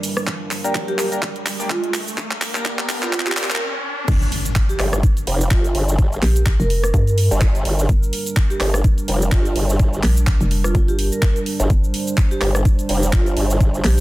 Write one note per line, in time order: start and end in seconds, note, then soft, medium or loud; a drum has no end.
0.00 3.57 G3 medium
0.00 3.57 D4 medium
0.00 3.57 A#4 medium
0.00 open hi-hat medium
0.00 riser medium
0.00 shaker medium
0.17 cross-stick medium
0.17 shaker soft
0.27 kick loud
0.27 clap medium
0.27 closed hi-hat medium
0.27 shaker soft
0.51 clap medium
0.51 open hi-hat loud
0.51 shaker medium
0.64 0.96 A#3 medium
0.64 0.96 D4 medium
0.64 0.96 G4 medium
0.64 0.96 A#4 medium
0.64 closed hi-hat soft
0.64 shaker soft
0.75 kick loud
0.75 clap medium
0.75 closed hi-hat medium
0.75 shaker soft
0.88 1.07 G4 medium
0.88 closed hi-hat soft
0.99 1.09 A#3 medium
0.99 1.09 D4 medium
0.99 1.09 G4 medium
0.99 1.09 A#4 medium
0.99 clap medium
0.99 open hi-hat loud
0.99 shaker medium
1.12 1.20 A#3 medium
1.12 1.20 D4 medium
1.12 1.20 G4 medium
1.12 1.20 A#4 loud
1.12 closed hi-hat medium
1.12 shaker soft
1.22 kick loud
1.22 clap medium
1.22 closed hi-hat medium
1.22 shaker soft
1.36 closed hi-hat soft
1.46 clap medium
1.46 open hi-hat loud
1.46 shaker medium
1.60 1.68 A#3 medium
1.60 1.68 D4 medium
1.60 1.68 G4 medium
1.60 1.68 D5 medium
1.60 shaker soft
1.70 1.90 F4 medium
1.70 kick loud
1.70 clap medium
1.70 closed hi-hat medium
1.70 shaker soft
1.84 closed hi-hat medium
1.94 clap medium
1.94 open hi-hat medium
1.94 shaker medium
2.08 shaker soft
2.18 kick loud
2.18 clap medium
2.18 closed hi-hat medium
2.18 shaker soft
2.31 clap medium
2.31 closed hi-hat soft
2.41 clap medium
2.41 open hi-hat loud
2.41 shaker medium
2.55 2.87 A#3 medium
2.55 2.87 D4 medium
2.55 2.87 G4 medium
2.55 2.87 A#4 loud
2.55 clap medium
2.55 shaker soft
2.65 kick loud
2.65 clap medium
2.65 closed hi-hat medium
2.65 shaker soft
2.79 clap medium
2.79 closed hi-hat soft
2.89 3.00 A#3 medium
2.89 3.00 D4 medium
2.89 3.00 G4 medium
2.89 3.00 A#4 medium
2.89 clap loud
2.89 open hi-hat loud
2.89 shaker medium
3.03 3.11 A#3 medium
3.03 3.11 D4 medium
3.03 3.09 F4 medium
3.03 3.11 G4 medium
3.03 3.11 A#4 loud
3.03 clap medium
3.03 shaker soft
3.13 3.22 F4 medium
3.13 kick loud
3.13 clap loud
3.13 closed hi-hat medium
3.13 shaker soft
3.20 clap medium
3.26 3.45 G4 medium
3.26 clap medium
3.26 closed hi-hat soft
3.32 clap medium
3.37 3.47 A#3 medium
3.37 3.47 D4 medium
3.37 3.47 G4 medium
3.37 3.47 A#4 loud
3.37 clap loud
3.37 open hi-hat loud
3.37 shaker medium
3.43 clap medium
3.50 3.58 A#3 medium
3.50 3.58 D4 medium
3.50 3.58 G4 medium
3.50 3.57 A#4 medium
3.50 3.58 A#4 loud
3.50 clap medium
3.50 shaker soft
3.55 clap medium
4.08 4.30 G1 loud
4.08 14.00 G3 medium
4.08 14.00 D4 medium
4.08 11.69 A#4 medium
4.08 kick loud
4.08 closed hi-hat medium
4.08 crash loud
4.08 impact medium
4.08 shaker medium
4.22 shaker soft
4.32 open hi-hat loud
4.45 closed hi-hat soft
4.45 shaker medium
4.56 kick loud
4.56 clap loud
4.56 closed hi-hat medium
4.56 shaker medium
4.69 4.88 G4 medium
4.69 closed hi-hat soft
4.69 shaker soft
4.79 5.02 G1 loud
4.79 cross-stick medium
4.79 clap medium
4.79 open hi-hat medium
4.93 cross-stick medium
4.93 closed hi-hat medium
4.93 shaker medium
5.03 kick loud
5.03 closed hi-hat medium
5.03 shaker medium
5.17 closed hi-hat soft
5.17 shaker soft
5.27 5.49 F1 loud
5.27 open hi-hat loud
5.41 shaker medium
5.51 5.73 G1 loud
5.51 5.71 F4 medium
5.51 kick loud
5.51 clap loud
5.51 closed hi-hat medium
5.51 shaker medium
5.64 closed hi-hat medium
5.64 shaker soft
5.75 6.21 G1 loud
5.75 open hi-hat medium
5.89 shaker medium
5.99 kick loud
5.99 closed hi-hat medium
5.99 shaker medium
6.12 shaker soft
6.22 6.58 A#1 loud
6.22 6.42 G4 medium
6.22 clap medium
6.22 open hi-hat loud
6.36 closed hi-hat soft
6.36 shaker medium
6.46 kick loud
6.46 clap loud
6.46 closed hi-hat medium
6.46 shaker medium
6.60 6.92 F1 loud
6.60 7.26 A#4 medium
6.60 closed hi-hat soft
6.60 shaker soft
6.70 open hi-hat loud
6.84 cross-stick medium
6.84 closed hi-hat medium
6.84 shaker medium
6.94 7.29 G2 medium
6.94 kick loud
6.94 closed hi-hat medium
6.94 shaker medium
7.07 closed hi-hat soft
7.07 shaker soft
7.18 open hi-hat loud
7.31 7.64 G1 medium
7.31 shaker medium
7.41 kick loud
7.41 clap loud
7.41 closed hi-hat medium
7.41 shaker medium
7.55 closed hi-hat medium
7.55 shaker soft
7.65 7.87 G1 loud
7.65 open hi-hat medium
7.79 shaker medium
7.89 8.11 G1 loud
7.89 kick loud
7.89 closed hi-hat medium
7.89 shaker medium
8.03 shaker soft
8.13 open hi-hat loud
8.26 closed hi-hat soft
8.26 shaker medium
8.37 kick loud
8.37 clap loud
8.37 closed hi-hat medium
8.37 shaker medium
8.50 8.69 G4 medium
8.50 closed hi-hat soft
8.50 shaker soft
8.60 8.83 G1 loud
8.60 cross-stick medium
8.60 clap medium
8.60 open hi-hat loud
8.74 cross-stick medium
8.74 closed hi-hat medium
8.74 shaker medium
8.84 kick loud
8.84 closed hi-hat medium
8.84 shaker medium
8.98 closed hi-hat soft
8.98 shaker soft
9.08 9.30 F1 loud
9.08 open hi-hat loud
9.22 shaker medium
9.32 9.54 G1 loud
9.32 9.52 F4 medium
9.32 kick loud
9.32 clap loud
9.32 closed hi-hat medium
9.32 shaker medium
9.45 closed hi-hat medium
9.45 shaker soft
9.56 10.02 G1 loud
9.56 open hi-hat loud
9.70 shaker medium
9.79 kick loud
9.79 closed hi-hat medium
9.79 shaker medium
9.93 shaker soft
10.03 10.39 A#1 loud
10.03 clap medium
10.03 open hi-hat loud
10.17 closed hi-hat soft
10.17 shaker medium
10.27 kick loud
10.27 clap loud
10.27 closed hi-hat medium
10.27 shaker medium
10.41 10.73 F1 loud
10.41 closed hi-hat soft
10.41 shaker soft
10.51 open hi-hat loud
10.64 10.71 F4 medium
10.64 cross-stick medium
10.64 closed hi-hat soft
10.64 shaker medium
10.75 11.10 G1 loud
10.75 10.84 F4 medium
10.75 kick loud
10.75 closed hi-hat medium
10.75 shaker medium
10.88 11.07 G4 medium
10.88 closed hi-hat soft
10.88 shaker soft
10.99 open hi-hat loud
11.12 11.19 A#4 medium
11.12 closed hi-hat soft
11.12 shaker medium
11.22 11.31 A#4 medium
11.22 kick loud
11.22 clap loud
11.22 closed hi-hat medium
11.22 shaker medium
11.36 closed hi-hat medium
11.36 shaker soft
11.46 open hi-hat medium
11.60 11.68 G1 loud
11.60 closed hi-hat soft
11.60 shaker medium
11.70 11.92 G1 loud
11.70 14.00 C5 medium
11.70 kick loud
11.70 closed hi-hat medium
11.70 shaker medium
11.84 shaker soft
11.94 open hi-hat loud
12.07 closed hi-hat soft
12.07 shaker medium
12.17 kick loud
12.17 clap loud
12.17 closed hi-hat medium
12.17 shaker medium
12.31 12.50 G4 medium
12.31 closed hi-hat soft
12.31 shaker soft
12.41 12.64 G1 loud
12.41 cross-stick medium
12.41 clap medium
12.41 open hi-hat medium
12.55 cross-stick medium
12.55 closed hi-hat medium
12.55 shaker medium
12.65 kick loud
12.65 closed hi-hat medium
12.65 shaker medium
12.79 closed hi-hat soft
12.79 shaker soft
12.89 13.11 F1 loud
12.89 open hi-hat loud
13.03 shaker medium
13.13 13.35 G1 loud
13.13 13.33 F4 medium
13.13 kick loud
13.13 clap loud
13.13 closed hi-hat medium
13.13 shaker medium
13.26 closed hi-hat medium
13.26 shaker soft
13.37 13.83 G1 loud
13.37 open hi-hat medium
13.51 shaker medium
13.61 kick loud
13.61 closed hi-hat medium
13.61 shaker medium
13.74 shaker soft
13.84 14.00 A#1 loud
13.84 14.00 G4 medium
13.84 clap medium
13.84 open hi-hat loud